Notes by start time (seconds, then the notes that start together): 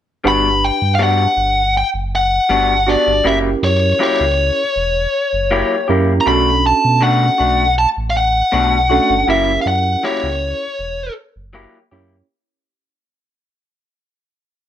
0.24 G1 G3 B3 D4 F#4 G4 B4 B5
0.65 G5
0.82 G2
0.95 F5
0.99 G3 B3 D4 F#4 F#5
1.37 G1
1.77 G5
1.94 F#1
2.15 F#5
2.49 G1 G3 B3 D4 F#4
2.87 B3 D4 F#4 G4 D5
3.07 G1
3.24 F#1 F#3 A#3 C#4 E4 G4 A#4 E5
3.63 F#2 C#5
3.99 F#3 A#3 E4 G4
4.03 C#5
4.20 C#2
4.76 E1
5.33 F#1
5.51 F#3 A#3 E4 G4
5.88 F#2 A#3 C#4 E4 G4 A#4
6.21 A#5
6.26 B1 B2 A3 C#4 D4 F#4 A4 B5
6.67 A5
6.85 B2
7.01 B2 A3 D4 F#4 F#5
7.38 B1 A3 D4 F#4
7.79 A5
7.97 A1
8.10 F5
8.17 F#5
8.52 B1 B2 A3 D4 F#4
8.90 A3 C#4 D4 F#4 A4
9.10 G1
9.28 F#1 F#3 A#3 C#4 E4 G4 A#4 E5
9.62 F5
9.66 F#2 F#5
10.03 F#3 A#3 E4 G4 C#5
10.23 C#2
10.79 E1
11.36 F#1
11.53 F#3 A#3 E4 G4
11.91 F#2 A#3 C#4 E4 G4 C#5